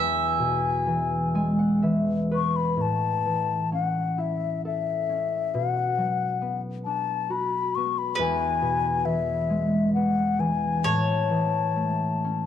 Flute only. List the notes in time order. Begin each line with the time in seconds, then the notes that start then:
0.00 G#5
2.35 C#6
2.56 B5
2.81 A5
3.73 F#5
4.20 E5
4.66 E5
5.54 F#5
6.85 A5
7.31 B5
7.75 C#6
7.98 B5
8.20 G#5
9.05 E5
9.94 F#5
10.40 G#5
10.85 A5